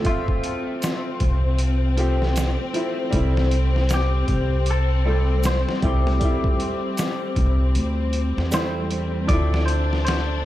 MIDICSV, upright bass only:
0, 0, Header, 1, 2, 480
1, 0, Start_track
1, 0, Key_signature, -1, "minor"
1, 0, Tempo, 769231
1, 35, Time_signature, 4, 2, 24, 8
1, 6521, End_track
2, 0, Start_track
2, 0, Title_t, "Upright bass"
2, 0, Program_c, 0, 32
2, 755, Note_on_c, 0, 36, 90
2, 1591, Note_off_c, 0, 36, 0
2, 1953, Note_on_c, 0, 36, 99
2, 2656, Note_off_c, 0, 36, 0
2, 2675, Note_on_c, 0, 36, 93
2, 3511, Note_off_c, 0, 36, 0
2, 3639, Note_on_c, 0, 36, 91
2, 3854, Note_off_c, 0, 36, 0
2, 4599, Note_on_c, 0, 36, 92
2, 4839, Note_off_c, 0, 36, 0
2, 4843, Note_on_c, 0, 38, 89
2, 5195, Note_off_c, 0, 38, 0
2, 5224, Note_on_c, 0, 40, 80
2, 5779, Note_off_c, 0, 40, 0
2, 5799, Note_on_c, 0, 38, 100
2, 6520, Note_off_c, 0, 38, 0
2, 6521, End_track
0, 0, End_of_file